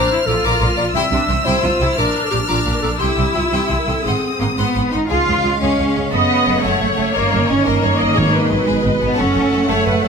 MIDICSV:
0, 0, Header, 1, 9, 480
1, 0, Start_track
1, 0, Tempo, 342270
1, 1346, Time_signature, 12, 3, 24, 8
1, 14136, End_track
2, 0, Start_track
2, 0, Title_t, "Violin section"
2, 0, Program_c, 0, 48
2, 0, Note_on_c, 0, 89, 55
2, 1290, Note_off_c, 0, 89, 0
2, 1317, Note_on_c, 0, 88, 55
2, 2735, Note_off_c, 0, 88, 0
2, 2741, Note_on_c, 0, 89, 47
2, 4194, Note_off_c, 0, 89, 0
2, 4226, Note_on_c, 0, 88, 43
2, 5647, Note_off_c, 0, 88, 0
2, 5674, Note_on_c, 0, 87, 38
2, 6900, Note_off_c, 0, 87, 0
2, 7161, Note_on_c, 0, 77, 49
2, 8540, Note_off_c, 0, 77, 0
2, 8607, Note_on_c, 0, 78, 43
2, 10033, Note_off_c, 0, 78, 0
2, 10035, Note_on_c, 0, 75, 57
2, 12842, Note_off_c, 0, 75, 0
2, 12881, Note_on_c, 0, 78, 60
2, 14136, Note_off_c, 0, 78, 0
2, 14136, End_track
3, 0, Start_track
3, 0, Title_t, "Violin section"
3, 0, Program_c, 1, 48
3, 388, Note_on_c, 1, 82, 44
3, 394, Note_on_c, 1, 86, 45
3, 484, Note_off_c, 1, 82, 0
3, 489, Note_off_c, 1, 86, 0
3, 623, Note_on_c, 1, 82, 61
3, 623, Note_on_c, 1, 86, 61
3, 841, Note_off_c, 1, 86, 0
3, 846, Note_off_c, 1, 82, 0
3, 858, Note_on_c, 1, 86, 49
3, 862, Note_on_c, 1, 82, 42
3, 956, Note_off_c, 1, 86, 0
3, 959, Note_off_c, 1, 82, 0
3, 1084, Note_on_c, 1, 82, 53
3, 1092, Note_on_c, 1, 86, 47
3, 1184, Note_off_c, 1, 82, 0
3, 1191, Note_off_c, 1, 86, 0
3, 1337, Note_on_c, 1, 79, 61
3, 1346, Note_on_c, 1, 84, 59
3, 1562, Note_off_c, 1, 79, 0
3, 1567, Note_off_c, 1, 84, 0
3, 1581, Note_on_c, 1, 79, 43
3, 1596, Note_on_c, 1, 84, 41
3, 1677, Note_off_c, 1, 79, 0
3, 1688, Note_off_c, 1, 84, 0
3, 1805, Note_on_c, 1, 79, 40
3, 1808, Note_on_c, 1, 84, 39
3, 1904, Note_off_c, 1, 79, 0
3, 1907, Note_off_c, 1, 84, 0
3, 2038, Note_on_c, 1, 84, 53
3, 2040, Note_on_c, 1, 79, 67
3, 2267, Note_off_c, 1, 84, 0
3, 2273, Note_off_c, 1, 79, 0
3, 2284, Note_on_c, 1, 84, 36
3, 2295, Note_on_c, 1, 79, 39
3, 2383, Note_off_c, 1, 84, 0
3, 2392, Note_off_c, 1, 79, 0
3, 2533, Note_on_c, 1, 79, 44
3, 2542, Note_on_c, 1, 84, 46
3, 2630, Note_off_c, 1, 79, 0
3, 2637, Note_off_c, 1, 84, 0
3, 2774, Note_on_c, 1, 82, 47
3, 2778, Note_on_c, 1, 86, 53
3, 2997, Note_off_c, 1, 82, 0
3, 2999, Note_off_c, 1, 86, 0
3, 3227, Note_on_c, 1, 82, 45
3, 3235, Note_on_c, 1, 86, 45
3, 3328, Note_off_c, 1, 82, 0
3, 3335, Note_off_c, 1, 86, 0
3, 3478, Note_on_c, 1, 86, 51
3, 3484, Note_on_c, 1, 82, 58
3, 3708, Note_off_c, 1, 86, 0
3, 3712, Note_off_c, 1, 82, 0
3, 3743, Note_on_c, 1, 86, 36
3, 3745, Note_on_c, 1, 82, 36
3, 3837, Note_off_c, 1, 86, 0
3, 3839, Note_off_c, 1, 82, 0
3, 3967, Note_on_c, 1, 86, 41
3, 3974, Note_on_c, 1, 82, 39
3, 4064, Note_off_c, 1, 86, 0
3, 4070, Note_off_c, 1, 82, 0
3, 4200, Note_on_c, 1, 79, 50
3, 4206, Note_on_c, 1, 84, 46
3, 4425, Note_off_c, 1, 79, 0
3, 4429, Note_off_c, 1, 84, 0
3, 4442, Note_on_c, 1, 79, 36
3, 4446, Note_on_c, 1, 84, 34
3, 4541, Note_off_c, 1, 79, 0
3, 4544, Note_off_c, 1, 84, 0
3, 4693, Note_on_c, 1, 79, 33
3, 4697, Note_on_c, 1, 84, 29
3, 4791, Note_off_c, 1, 79, 0
3, 4793, Note_off_c, 1, 84, 0
3, 4949, Note_on_c, 1, 79, 51
3, 4949, Note_on_c, 1, 84, 47
3, 5163, Note_off_c, 1, 84, 0
3, 5167, Note_off_c, 1, 79, 0
3, 5180, Note_on_c, 1, 84, 34
3, 5184, Note_on_c, 1, 79, 28
3, 5278, Note_off_c, 1, 84, 0
3, 5281, Note_off_c, 1, 79, 0
3, 5437, Note_on_c, 1, 84, 36
3, 5443, Note_on_c, 1, 79, 38
3, 5533, Note_off_c, 1, 84, 0
3, 5537, Note_off_c, 1, 79, 0
3, 5695, Note_on_c, 1, 84, 37
3, 5704, Note_on_c, 1, 78, 42
3, 5912, Note_off_c, 1, 84, 0
3, 5917, Note_off_c, 1, 78, 0
3, 6178, Note_on_c, 1, 78, 36
3, 6184, Note_on_c, 1, 84, 30
3, 6273, Note_off_c, 1, 78, 0
3, 6277, Note_off_c, 1, 84, 0
3, 6412, Note_on_c, 1, 84, 43
3, 6414, Note_on_c, 1, 78, 47
3, 6638, Note_off_c, 1, 84, 0
3, 6639, Note_off_c, 1, 78, 0
3, 6664, Note_on_c, 1, 84, 34
3, 6667, Note_on_c, 1, 78, 32
3, 6760, Note_off_c, 1, 84, 0
3, 6762, Note_off_c, 1, 78, 0
3, 6903, Note_on_c, 1, 78, 35
3, 6903, Note_on_c, 1, 84, 29
3, 6999, Note_off_c, 1, 78, 0
3, 6999, Note_off_c, 1, 84, 0
3, 7130, Note_on_c, 1, 68, 58
3, 7134, Note_on_c, 1, 73, 49
3, 7359, Note_off_c, 1, 68, 0
3, 7393, Note_on_c, 1, 68, 47
3, 7488, Note_off_c, 1, 68, 0
3, 7626, Note_on_c, 1, 68, 39
3, 7722, Note_off_c, 1, 68, 0
3, 7874, Note_on_c, 1, 68, 59
3, 8095, Note_off_c, 1, 68, 0
3, 8110, Note_on_c, 1, 68, 39
3, 8205, Note_off_c, 1, 68, 0
3, 8343, Note_on_c, 1, 68, 42
3, 8439, Note_off_c, 1, 68, 0
3, 8565, Note_on_c, 1, 69, 47
3, 8797, Note_off_c, 1, 69, 0
3, 9059, Note_on_c, 1, 69, 48
3, 9156, Note_off_c, 1, 69, 0
3, 9320, Note_on_c, 1, 69, 64
3, 9535, Note_off_c, 1, 69, 0
3, 9556, Note_on_c, 1, 69, 41
3, 9649, Note_off_c, 1, 69, 0
3, 9776, Note_on_c, 1, 69, 46
3, 9873, Note_off_c, 1, 69, 0
3, 10019, Note_on_c, 1, 70, 57
3, 10235, Note_off_c, 1, 70, 0
3, 10251, Note_on_c, 1, 70, 42
3, 10350, Note_off_c, 1, 70, 0
3, 10505, Note_on_c, 1, 70, 45
3, 10600, Note_off_c, 1, 70, 0
3, 10743, Note_on_c, 1, 70, 65
3, 10953, Note_off_c, 1, 70, 0
3, 10970, Note_on_c, 1, 70, 44
3, 11068, Note_off_c, 1, 70, 0
3, 11203, Note_on_c, 1, 70, 47
3, 11302, Note_off_c, 1, 70, 0
3, 11399, Note_off_c, 1, 73, 0
3, 11425, Note_on_c, 1, 68, 61
3, 11431, Note_on_c, 1, 71, 43
3, 11663, Note_off_c, 1, 68, 0
3, 11902, Note_on_c, 1, 68, 39
3, 12004, Note_off_c, 1, 68, 0
3, 12153, Note_on_c, 1, 68, 62
3, 12354, Note_off_c, 1, 68, 0
3, 12371, Note_on_c, 1, 68, 41
3, 12475, Note_off_c, 1, 68, 0
3, 12639, Note_on_c, 1, 68, 51
3, 12737, Note_off_c, 1, 68, 0
3, 12848, Note_on_c, 1, 69, 57
3, 12848, Note_on_c, 1, 73, 50
3, 12878, Note_off_c, 1, 71, 0
3, 13084, Note_off_c, 1, 69, 0
3, 13101, Note_on_c, 1, 69, 50
3, 13202, Note_off_c, 1, 69, 0
3, 13358, Note_on_c, 1, 69, 43
3, 13455, Note_off_c, 1, 69, 0
3, 13596, Note_on_c, 1, 69, 63
3, 13822, Note_off_c, 1, 69, 0
3, 13851, Note_on_c, 1, 69, 42
3, 13945, Note_off_c, 1, 69, 0
3, 14087, Note_on_c, 1, 69, 49
3, 14136, Note_off_c, 1, 69, 0
3, 14136, Note_off_c, 1, 73, 0
3, 14136, End_track
4, 0, Start_track
4, 0, Title_t, "Clarinet"
4, 0, Program_c, 2, 71
4, 0, Note_on_c, 2, 72, 83
4, 373, Note_on_c, 2, 69, 78
4, 394, Note_off_c, 2, 72, 0
4, 641, Note_on_c, 2, 70, 60
4, 662, Note_off_c, 2, 69, 0
4, 1074, Note_off_c, 2, 70, 0
4, 1083, Note_on_c, 2, 74, 69
4, 1195, Note_off_c, 2, 74, 0
4, 1327, Note_on_c, 2, 76, 73
4, 2039, Note_on_c, 2, 72, 65
4, 2060, Note_off_c, 2, 76, 0
4, 2778, Note_on_c, 2, 70, 68
4, 2799, Note_off_c, 2, 72, 0
4, 3146, Note_on_c, 2, 69, 55
4, 3167, Note_off_c, 2, 70, 0
4, 3226, Note_off_c, 2, 69, 0
4, 3235, Note_on_c, 2, 67, 64
4, 3347, Note_off_c, 2, 67, 0
4, 3487, Note_on_c, 2, 65, 51
4, 3650, Note_off_c, 2, 65, 0
4, 3841, Note_on_c, 2, 70, 52
4, 3948, Note_off_c, 2, 70, 0
4, 3956, Note_on_c, 2, 69, 56
4, 4068, Note_off_c, 2, 69, 0
4, 4200, Note_on_c, 2, 67, 59
4, 4695, Note_on_c, 2, 65, 51
4, 4716, Note_off_c, 2, 67, 0
4, 4937, Note_off_c, 2, 65, 0
4, 4955, Note_on_c, 2, 67, 53
4, 5323, Note_on_c, 2, 70, 41
4, 5344, Note_off_c, 2, 67, 0
4, 5448, Note_on_c, 2, 69, 47
4, 5469, Note_off_c, 2, 70, 0
4, 5654, Note_off_c, 2, 69, 0
4, 5663, Note_on_c, 2, 68, 53
4, 6388, Note_off_c, 2, 68, 0
4, 14136, End_track
5, 0, Start_track
5, 0, Title_t, "Viola section"
5, 0, Program_c, 3, 48
5, 0, Note_on_c, 3, 62, 59
5, 155, Note_off_c, 3, 62, 0
5, 170, Note_on_c, 3, 64, 55
5, 262, Note_off_c, 3, 64, 0
5, 380, Note_on_c, 3, 65, 55
5, 1320, Note_off_c, 3, 65, 0
5, 1330, Note_on_c, 3, 64, 55
5, 1428, Note_off_c, 3, 64, 0
5, 1573, Note_on_c, 3, 62, 48
5, 1812, Note_off_c, 3, 62, 0
5, 1833, Note_on_c, 3, 60, 54
5, 2045, Note_on_c, 3, 64, 56
5, 2067, Note_off_c, 3, 60, 0
5, 2292, Note_on_c, 3, 65, 52
5, 2293, Note_off_c, 3, 64, 0
5, 2536, Note_off_c, 3, 65, 0
5, 2538, Note_on_c, 3, 64, 56
5, 2777, Note_off_c, 3, 64, 0
5, 2778, Note_on_c, 3, 62, 56
5, 3468, Note_off_c, 3, 62, 0
5, 3485, Note_on_c, 3, 62, 44
5, 4194, Note_off_c, 3, 62, 0
5, 4218, Note_on_c, 3, 64, 53
5, 5644, Note_off_c, 3, 64, 0
5, 5685, Note_on_c, 3, 60, 41
5, 6783, Note_off_c, 3, 60, 0
5, 8608, Note_on_c, 3, 75, 65
5, 9265, Note_off_c, 3, 75, 0
5, 9326, Note_on_c, 3, 73, 52
5, 10754, Note_off_c, 3, 73, 0
5, 10758, Note_on_c, 3, 70, 56
5, 10984, Note_off_c, 3, 70, 0
5, 10986, Note_on_c, 3, 73, 53
5, 11223, Note_off_c, 3, 73, 0
5, 11225, Note_on_c, 3, 75, 56
5, 11462, Note_off_c, 3, 75, 0
5, 11462, Note_on_c, 3, 73, 68
5, 11700, Note_off_c, 3, 73, 0
5, 11702, Note_on_c, 3, 71, 59
5, 11930, Note_off_c, 3, 71, 0
5, 11947, Note_on_c, 3, 71, 51
5, 12897, Note_off_c, 3, 71, 0
5, 12901, Note_on_c, 3, 69, 52
5, 13596, Note_off_c, 3, 69, 0
5, 13611, Note_on_c, 3, 73, 60
5, 13833, Note_on_c, 3, 71, 58
5, 13846, Note_off_c, 3, 73, 0
5, 14071, Note_off_c, 3, 71, 0
5, 14074, Note_on_c, 3, 69, 59
5, 14136, Note_off_c, 3, 69, 0
5, 14136, End_track
6, 0, Start_track
6, 0, Title_t, "Trombone section"
6, 0, Program_c, 4, 61
6, 7141, Note_on_c, 4, 49, 62
6, 7142, Note_on_c, 4, 56, 56
6, 8530, Note_off_c, 4, 56, 0
6, 8601, Note_on_c, 4, 57, 51
6, 9965, Note_off_c, 4, 49, 0
6, 9974, Note_off_c, 4, 57, 0
6, 10033, Note_on_c, 4, 51, 63
6, 10034, Note_on_c, 4, 61, 60
6, 11409, Note_off_c, 4, 61, 0
6, 11459, Note_on_c, 4, 47, 58
6, 12835, Note_off_c, 4, 47, 0
6, 12841, Note_off_c, 4, 51, 0
6, 12879, Note_on_c, 4, 49, 64
6, 12890, Note_on_c, 4, 57, 63
6, 14136, Note_off_c, 4, 49, 0
6, 14136, Note_off_c, 4, 57, 0
6, 14136, End_track
7, 0, Start_track
7, 0, Title_t, "Cello section"
7, 0, Program_c, 5, 48
7, 397, Note_on_c, 5, 46, 43
7, 492, Note_off_c, 5, 46, 0
7, 625, Note_on_c, 5, 46, 62
7, 722, Note_off_c, 5, 46, 0
7, 872, Note_on_c, 5, 46, 41
7, 967, Note_off_c, 5, 46, 0
7, 1108, Note_on_c, 5, 46, 42
7, 1203, Note_off_c, 5, 46, 0
7, 1345, Note_on_c, 5, 48, 61
7, 1441, Note_off_c, 5, 48, 0
7, 1577, Note_on_c, 5, 48, 42
7, 1674, Note_off_c, 5, 48, 0
7, 1834, Note_on_c, 5, 48, 42
7, 1927, Note_off_c, 5, 48, 0
7, 2057, Note_on_c, 5, 48, 55
7, 2154, Note_off_c, 5, 48, 0
7, 2286, Note_on_c, 5, 48, 44
7, 2385, Note_off_c, 5, 48, 0
7, 2543, Note_on_c, 5, 48, 45
7, 2637, Note_off_c, 5, 48, 0
7, 2784, Note_on_c, 5, 46, 53
7, 2878, Note_off_c, 5, 46, 0
7, 3254, Note_on_c, 5, 46, 37
7, 3350, Note_off_c, 5, 46, 0
7, 3498, Note_on_c, 5, 46, 51
7, 3593, Note_off_c, 5, 46, 0
7, 3722, Note_on_c, 5, 46, 41
7, 3820, Note_off_c, 5, 46, 0
7, 3966, Note_on_c, 5, 46, 34
7, 4063, Note_off_c, 5, 46, 0
7, 4217, Note_on_c, 5, 48, 52
7, 4312, Note_off_c, 5, 48, 0
7, 4450, Note_on_c, 5, 48, 35
7, 4547, Note_off_c, 5, 48, 0
7, 4688, Note_on_c, 5, 48, 37
7, 4786, Note_off_c, 5, 48, 0
7, 4928, Note_on_c, 5, 48, 38
7, 5027, Note_off_c, 5, 48, 0
7, 5176, Note_on_c, 5, 48, 35
7, 5275, Note_off_c, 5, 48, 0
7, 5427, Note_on_c, 5, 48, 33
7, 5525, Note_off_c, 5, 48, 0
7, 5666, Note_on_c, 5, 44, 39
7, 5765, Note_off_c, 5, 44, 0
7, 6159, Note_on_c, 5, 44, 32
7, 6162, Note_on_c, 5, 58, 47
7, 6258, Note_off_c, 5, 44, 0
7, 6260, Note_off_c, 5, 58, 0
7, 6397, Note_on_c, 5, 44, 42
7, 6397, Note_on_c, 5, 59, 47
7, 6497, Note_off_c, 5, 44, 0
7, 6652, Note_on_c, 5, 44, 33
7, 6751, Note_off_c, 5, 44, 0
7, 6884, Note_off_c, 5, 59, 0
7, 6906, Note_on_c, 5, 44, 31
7, 6914, Note_on_c, 5, 63, 52
7, 7002, Note_off_c, 5, 44, 0
7, 7149, Note_off_c, 5, 63, 0
7, 7153, Note_on_c, 5, 65, 72
7, 7859, Note_off_c, 5, 65, 0
7, 7864, Note_on_c, 5, 61, 58
7, 8570, Note_off_c, 5, 61, 0
7, 8592, Note_on_c, 5, 59, 62
7, 9292, Note_off_c, 5, 59, 0
7, 9297, Note_on_c, 5, 57, 60
7, 9760, Note_off_c, 5, 57, 0
7, 9776, Note_on_c, 5, 57, 57
7, 10014, Note_off_c, 5, 57, 0
7, 10028, Note_on_c, 5, 58, 66
7, 10497, Note_off_c, 5, 58, 0
7, 10508, Note_on_c, 5, 61, 61
7, 10740, Note_on_c, 5, 58, 59
7, 10745, Note_off_c, 5, 61, 0
7, 11931, Note_on_c, 5, 54, 65
7, 11936, Note_off_c, 5, 58, 0
7, 12166, Note_on_c, 5, 56, 55
7, 12173, Note_off_c, 5, 54, 0
7, 12623, Note_on_c, 5, 59, 71
7, 12648, Note_off_c, 5, 56, 0
7, 12871, Note_off_c, 5, 59, 0
7, 12885, Note_on_c, 5, 61, 71
7, 13592, Note_on_c, 5, 57, 62
7, 13603, Note_off_c, 5, 61, 0
7, 14136, Note_off_c, 5, 57, 0
7, 14136, End_track
8, 0, Start_track
8, 0, Title_t, "Timpani"
8, 0, Program_c, 6, 47
8, 11465, Note_on_c, 6, 44, 64
8, 12129, Note_off_c, 6, 44, 0
8, 14136, End_track
9, 0, Start_track
9, 0, Title_t, "Double bass section"
9, 0, Program_c, 7, 48
9, 379, Note_on_c, 7, 34, 44
9, 478, Note_off_c, 7, 34, 0
9, 611, Note_on_c, 7, 34, 63
9, 710, Note_off_c, 7, 34, 0
9, 843, Note_on_c, 7, 34, 43
9, 944, Note_off_c, 7, 34, 0
9, 1072, Note_on_c, 7, 34, 44
9, 1175, Note_off_c, 7, 34, 0
9, 1324, Note_on_c, 7, 36, 56
9, 1423, Note_off_c, 7, 36, 0
9, 1556, Note_on_c, 7, 36, 44
9, 1657, Note_off_c, 7, 36, 0
9, 1809, Note_on_c, 7, 36, 43
9, 1907, Note_off_c, 7, 36, 0
9, 2063, Note_on_c, 7, 36, 63
9, 2158, Note_off_c, 7, 36, 0
9, 2300, Note_on_c, 7, 36, 41
9, 2396, Note_off_c, 7, 36, 0
9, 2532, Note_on_c, 7, 36, 38
9, 2629, Note_off_c, 7, 36, 0
9, 2779, Note_on_c, 7, 34, 54
9, 2874, Note_off_c, 7, 34, 0
9, 3257, Note_on_c, 7, 34, 37
9, 3352, Note_off_c, 7, 34, 0
9, 3496, Note_on_c, 7, 34, 61
9, 3591, Note_off_c, 7, 34, 0
9, 3746, Note_on_c, 7, 34, 40
9, 3839, Note_off_c, 7, 34, 0
9, 3973, Note_on_c, 7, 34, 37
9, 4069, Note_off_c, 7, 34, 0
9, 4225, Note_on_c, 7, 36, 53
9, 4319, Note_off_c, 7, 36, 0
9, 4470, Note_on_c, 7, 36, 40
9, 4564, Note_off_c, 7, 36, 0
9, 4705, Note_on_c, 7, 36, 33
9, 4800, Note_off_c, 7, 36, 0
9, 4934, Note_on_c, 7, 36, 45
9, 5032, Note_off_c, 7, 36, 0
9, 5195, Note_on_c, 7, 36, 33
9, 5290, Note_off_c, 7, 36, 0
9, 5435, Note_on_c, 7, 36, 33
9, 5531, Note_off_c, 7, 36, 0
9, 5699, Note_on_c, 7, 32, 44
9, 5791, Note_off_c, 7, 32, 0
9, 6189, Note_on_c, 7, 32, 33
9, 6282, Note_off_c, 7, 32, 0
9, 6428, Note_on_c, 7, 32, 49
9, 6522, Note_off_c, 7, 32, 0
9, 6680, Note_on_c, 7, 32, 29
9, 6773, Note_off_c, 7, 32, 0
9, 6922, Note_on_c, 7, 32, 28
9, 7014, Note_off_c, 7, 32, 0
9, 7164, Note_on_c, 7, 37, 59
9, 7256, Note_off_c, 7, 37, 0
9, 7404, Note_on_c, 7, 37, 45
9, 7496, Note_off_c, 7, 37, 0
9, 7628, Note_on_c, 7, 37, 44
9, 7724, Note_off_c, 7, 37, 0
9, 7887, Note_on_c, 7, 37, 55
9, 7980, Note_off_c, 7, 37, 0
9, 8124, Note_on_c, 7, 37, 39
9, 8217, Note_off_c, 7, 37, 0
9, 8363, Note_on_c, 7, 37, 42
9, 8455, Note_off_c, 7, 37, 0
9, 8603, Note_on_c, 7, 30, 53
9, 8695, Note_off_c, 7, 30, 0
9, 9085, Note_on_c, 7, 30, 43
9, 9177, Note_off_c, 7, 30, 0
9, 9322, Note_on_c, 7, 30, 59
9, 9414, Note_off_c, 7, 30, 0
9, 9566, Note_on_c, 7, 30, 37
9, 9657, Note_off_c, 7, 30, 0
9, 9804, Note_on_c, 7, 30, 38
9, 9896, Note_off_c, 7, 30, 0
9, 10052, Note_on_c, 7, 31, 56
9, 10143, Note_off_c, 7, 31, 0
9, 10283, Note_on_c, 7, 31, 46
9, 10375, Note_off_c, 7, 31, 0
9, 10531, Note_on_c, 7, 31, 44
9, 10621, Note_off_c, 7, 31, 0
9, 10761, Note_on_c, 7, 31, 62
9, 10853, Note_off_c, 7, 31, 0
9, 11000, Note_on_c, 7, 31, 43
9, 11092, Note_off_c, 7, 31, 0
9, 11249, Note_on_c, 7, 31, 45
9, 11339, Note_off_c, 7, 31, 0
9, 11481, Note_on_c, 7, 32, 64
9, 11572, Note_off_c, 7, 32, 0
9, 11955, Note_on_c, 7, 32, 41
9, 12047, Note_off_c, 7, 32, 0
9, 12186, Note_on_c, 7, 32, 65
9, 12279, Note_off_c, 7, 32, 0
9, 12430, Note_on_c, 7, 32, 43
9, 12523, Note_off_c, 7, 32, 0
9, 12662, Note_on_c, 7, 32, 42
9, 12756, Note_off_c, 7, 32, 0
9, 12896, Note_on_c, 7, 30, 62
9, 12991, Note_off_c, 7, 30, 0
9, 13119, Note_on_c, 7, 30, 48
9, 13216, Note_off_c, 7, 30, 0
9, 13357, Note_on_c, 7, 30, 46
9, 13454, Note_off_c, 7, 30, 0
9, 13606, Note_on_c, 7, 30, 61
9, 13701, Note_off_c, 7, 30, 0
9, 13840, Note_on_c, 7, 30, 42
9, 13936, Note_off_c, 7, 30, 0
9, 14072, Note_on_c, 7, 30, 43
9, 14136, Note_off_c, 7, 30, 0
9, 14136, End_track
0, 0, End_of_file